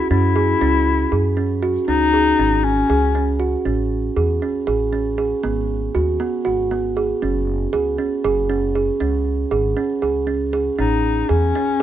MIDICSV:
0, 0, Header, 1, 4, 480
1, 0, Start_track
1, 0, Key_signature, 4, "minor"
1, 0, Tempo, 508906
1, 97, Time_signature, 7, 3, 24, 8
1, 11153, End_track
2, 0, Start_track
2, 0, Title_t, "Clarinet"
2, 0, Program_c, 0, 71
2, 94, Note_on_c, 0, 64, 88
2, 1479, Note_off_c, 0, 64, 0
2, 1767, Note_on_c, 0, 63, 99
2, 2489, Note_on_c, 0, 61, 83
2, 2503, Note_off_c, 0, 63, 0
2, 3210, Note_off_c, 0, 61, 0
2, 10172, Note_on_c, 0, 63, 74
2, 10647, Note_on_c, 0, 61, 84
2, 10661, Note_off_c, 0, 63, 0
2, 11153, Note_off_c, 0, 61, 0
2, 11153, End_track
3, 0, Start_track
3, 0, Title_t, "Kalimba"
3, 0, Program_c, 1, 108
3, 102, Note_on_c, 1, 61, 77
3, 287, Note_off_c, 1, 61, 0
3, 338, Note_on_c, 1, 68, 61
3, 525, Note_off_c, 1, 68, 0
3, 579, Note_on_c, 1, 61, 76
3, 953, Note_off_c, 1, 61, 0
3, 1057, Note_on_c, 1, 68, 62
3, 1244, Note_off_c, 1, 68, 0
3, 1292, Note_on_c, 1, 61, 60
3, 1480, Note_off_c, 1, 61, 0
3, 1533, Note_on_c, 1, 66, 69
3, 1721, Note_off_c, 1, 66, 0
3, 1774, Note_on_c, 1, 61, 68
3, 1961, Note_off_c, 1, 61, 0
3, 2014, Note_on_c, 1, 68, 56
3, 2201, Note_off_c, 1, 68, 0
3, 2257, Note_on_c, 1, 61, 66
3, 2631, Note_off_c, 1, 61, 0
3, 2733, Note_on_c, 1, 68, 69
3, 2921, Note_off_c, 1, 68, 0
3, 2972, Note_on_c, 1, 61, 62
3, 3160, Note_off_c, 1, 61, 0
3, 3203, Note_on_c, 1, 66, 60
3, 3394, Note_off_c, 1, 66, 0
3, 3447, Note_on_c, 1, 61, 68
3, 3825, Note_off_c, 1, 61, 0
3, 3928, Note_on_c, 1, 68, 65
3, 4118, Note_off_c, 1, 68, 0
3, 4171, Note_on_c, 1, 61, 65
3, 4359, Note_off_c, 1, 61, 0
3, 4406, Note_on_c, 1, 68, 68
3, 4596, Note_off_c, 1, 68, 0
3, 4647, Note_on_c, 1, 61, 59
3, 4837, Note_off_c, 1, 61, 0
3, 4887, Note_on_c, 1, 68, 61
3, 5077, Note_off_c, 1, 68, 0
3, 5126, Note_on_c, 1, 59, 78
3, 5505, Note_off_c, 1, 59, 0
3, 5609, Note_on_c, 1, 66, 71
3, 5799, Note_off_c, 1, 66, 0
3, 5847, Note_on_c, 1, 59, 71
3, 6037, Note_off_c, 1, 59, 0
3, 6083, Note_on_c, 1, 66, 75
3, 6275, Note_off_c, 1, 66, 0
3, 6331, Note_on_c, 1, 59, 66
3, 6520, Note_off_c, 1, 59, 0
3, 6572, Note_on_c, 1, 68, 66
3, 6761, Note_off_c, 1, 68, 0
3, 6812, Note_on_c, 1, 61, 73
3, 7189, Note_off_c, 1, 61, 0
3, 7291, Note_on_c, 1, 68, 73
3, 7481, Note_off_c, 1, 68, 0
3, 7531, Note_on_c, 1, 61, 66
3, 7721, Note_off_c, 1, 61, 0
3, 7776, Note_on_c, 1, 68, 79
3, 7964, Note_off_c, 1, 68, 0
3, 8013, Note_on_c, 1, 61, 68
3, 8202, Note_off_c, 1, 61, 0
3, 8257, Note_on_c, 1, 68, 64
3, 8445, Note_off_c, 1, 68, 0
3, 8492, Note_on_c, 1, 61, 71
3, 8870, Note_off_c, 1, 61, 0
3, 8972, Note_on_c, 1, 68, 70
3, 9162, Note_off_c, 1, 68, 0
3, 9211, Note_on_c, 1, 61, 70
3, 9402, Note_off_c, 1, 61, 0
3, 9452, Note_on_c, 1, 68, 70
3, 9642, Note_off_c, 1, 68, 0
3, 9687, Note_on_c, 1, 61, 60
3, 9879, Note_off_c, 1, 61, 0
3, 9934, Note_on_c, 1, 68, 65
3, 10123, Note_off_c, 1, 68, 0
3, 10173, Note_on_c, 1, 61, 70
3, 10551, Note_off_c, 1, 61, 0
3, 10651, Note_on_c, 1, 68, 65
3, 10842, Note_off_c, 1, 68, 0
3, 10898, Note_on_c, 1, 61, 70
3, 11086, Note_off_c, 1, 61, 0
3, 11153, End_track
4, 0, Start_track
4, 0, Title_t, "Upright bass"
4, 0, Program_c, 2, 32
4, 101, Note_on_c, 2, 42, 80
4, 503, Note_off_c, 2, 42, 0
4, 578, Note_on_c, 2, 37, 75
4, 982, Note_off_c, 2, 37, 0
4, 1059, Note_on_c, 2, 42, 65
4, 1664, Note_off_c, 2, 42, 0
4, 1777, Note_on_c, 2, 37, 72
4, 2180, Note_off_c, 2, 37, 0
4, 2254, Note_on_c, 2, 32, 72
4, 2658, Note_off_c, 2, 32, 0
4, 2733, Note_on_c, 2, 37, 61
4, 3341, Note_off_c, 2, 37, 0
4, 3448, Note_on_c, 2, 33, 69
4, 3855, Note_off_c, 2, 33, 0
4, 3930, Note_on_c, 2, 40, 71
4, 4134, Note_off_c, 2, 40, 0
4, 4410, Note_on_c, 2, 33, 67
4, 5019, Note_off_c, 2, 33, 0
4, 5133, Note_on_c, 2, 32, 74
4, 5538, Note_off_c, 2, 32, 0
4, 5617, Note_on_c, 2, 39, 78
4, 5818, Note_off_c, 2, 39, 0
4, 6096, Note_on_c, 2, 32, 67
4, 6704, Note_off_c, 2, 32, 0
4, 6816, Note_on_c, 2, 30, 84
4, 7221, Note_off_c, 2, 30, 0
4, 7297, Note_on_c, 2, 37, 80
4, 7499, Note_off_c, 2, 37, 0
4, 7777, Note_on_c, 2, 30, 82
4, 8385, Note_off_c, 2, 30, 0
4, 8496, Note_on_c, 2, 37, 79
4, 8902, Note_off_c, 2, 37, 0
4, 8974, Note_on_c, 2, 32, 73
4, 9178, Note_off_c, 2, 32, 0
4, 9461, Note_on_c, 2, 37, 69
4, 10068, Note_off_c, 2, 37, 0
4, 10179, Note_on_c, 2, 33, 80
4, 10584, Note_off_c, 2, 33, 0
4, 10660, Note_on_c, 2, 40, 74
4, 10862, Note_off_c, 2, 40, 0
4, 11153, End_track
0, 0, End_of_file